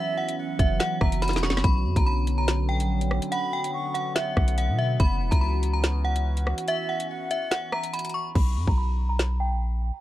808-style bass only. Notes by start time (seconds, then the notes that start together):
0.59 F#1
1.01 F#1
1.33 E1
1.49 F#1
1.64 B1
1.85 F#2
1.96 B1
2.80 A#1
4.37 B1
4.69 B2
5.00 F#1
5.21 E1
5.32 C#2
8.35 B1
8.56 F#2
8.68 B1
9.51 A#1